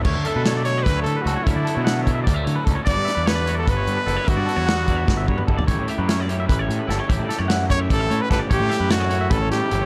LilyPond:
<<
  \new Staff \with { instrumentName = "Clean electric guitar" } { \time 7/8 \key d \major \tempo 4 = 149 cis''8 e''16 b'16 cis''16 d''16 cis''16 d''16 b'16 cis''8 b'16 a'16 cis''16 | e''16 d''16 a'16 cis''16 fis''8 cis''16 e''16 d''16 e''16 cis''16 b'16 a'16 cis''16 | d''8 e''16 b'16 cis''16 d''16 cis''16 d''16 b'16 cis''8 b'16 a'16 cis''16 | e''16 d''16 a'16 cis''16 fis''8 d''16 e''16 d''16 e''16 cis''16 b'16 a'16 d''16 |
cis''8 e''16 b'16 cis''16 d''16 cis''16 e''16 b'16 cis''8 b'16 a'16 cis''16 | e''16 d''16 a'16 cis''16 fis''8 cis''16 e''16 d''16 e''16 cis''16 b'16 a'16 d''16 | cis''8 e''16 b'16 cis''16 d''16 cis''16 e''16 b'16 cis''8 b'16 a'16 cis''16 | }
  \new Staff \with { instrumentName = "Trumpet" } { \time 7/8 \key d \major r8 a'4 cis''8 b'8 a'8 fis'8 | e'2 r4. | d''4 b'8. a'16 b'4. | fis'2. r8 |
r2. r8 | r4. cis''8 a'8. b'16 b'8 | g'4 fis'4 a'8 g'4 | }
  \new Staff \with { instrumentName = "Clean electric guitar" } { \time 7/8 \key d \major << { <a cis' e'>8 b16 r16 a8 e'8 a4 cis'8 | <a cis'>8 b16 r16 a4 g16 a8. cis'8 | <b e' fis'>8 e'8 b8 fis'8 b4 e'8 | <b e'>8 e'8 b8 e'8 b4 e'8 |
<e' g'>8 g'8 e'8 g'8 e'4 e'16 g'16 | <e' g'>8 g'8 e'8 g'8 e'4 g'8 | <cis' e'>8 e'8 cis'8 e'8 cis'4 e'8 | } \\ { d4 fis4. a,4 | d4 fis4. a,4 | g,4 d4. d4 | g,4 d4. d4 |
a,4 cis'4. a,4 | a,4 cis'4. a,4 | a,4 a4. e,4 | } >> }
  \new Staff \with { instrumentName = "Overdriven electric guitar" } { \time 7/8 \key d \major <d fis a d'>8 <fis a d'>8 <d fis a d'>8 <fis a d'>4. <d fis a d'>8 | <d fis a d'>8 <fis a d'>8 <d fis a d'>8 <fis a d'>4. <d fis a d'>8 | <g, d g b d'>8 <g b d'>8 <d g b d'>8 <g b d'>4. <g, d g b d'>8 | <g, d g b d'>8 <g b d'>8 <d g b d'>8 <g b d'>4. <g, d g b d'>8 |
<a, e g cis' e'>8 <g cis' e'>8 <e g cis' e'>8 <g cis' e'>4. <a, e g cis' e'>8 | <a, e g cis' e'>8 <g cis' e'>8 <e g cis' e'>8 <g cis' e'>4. <a, e g cis' e'>8 | <a, e g cis' e'>8 <g cis' e'>8 <e g cis' e'>8 <g cis' e'>4. <a, e g cis' e'>8 | }
  \new Staff \with { instrumentName = "Picked electric bass" } { \clef bass \time 7/8 \key d \major d,16 d16 r16 b,4~ b,16 d,8 d16 r16 cis,16 r16 | d,16 d16 r16 b,4~ b,16 d,8 d16 r16 cis,16 r16 | g,,16 g,16 r16 e,4~ e,16 g,,8 g,16 r16 fis,,16 r16 | g,,16 g,16 r16 e,4~ e,16 g,,8 g,16 r16 fis,,16 r16 |
a,,16 a,16 r16 fis,4~ fis,16 a,,8 a,16 r16 g,,16 r16 | a,,16 a,16 r16 fis,4~ fis,16 a,,8 a,16 r16 g,,16 r16 | a,,16 a,16 r16 fis,4~ fis,16 a,,8 a,16 r16 g,,16 r16 | }
  \new DrumStaff \with { instrumentName = "Drums" } \drummode { \time 7/8 <cymc bd>8 hh8 <hh sn>8 hh8 <hh bd sn>8 hh8 hh8 | <hh bd>8 hh8 <hh sn>8 <hh bd>8 <hh bd>8 hh8 <hh bd>8 | <hh bd>8 <hh sn>8 <hh sn>8 hh8 <hh bd>8 hh8 hh8 | <hh bd>8 hh8 <hh sn>8 <hh bd>8 <bd sn>8 bd16 toml16 bd16 tomfh16 |
<hh bd>8 hh8 <hh sn>8 hh8 <hh bd>8 hh8 <hh sn>8 | <hh bd>8 <hh sn>8 <hh sn>8 <hh bd>8 <hh bd>8 hh8 <hh bd sn>8 | <hh bd>8 <hh sn>8 <hh sn>8 hh8 <hh bd>8 <hh sn>8 hh8 | }
>>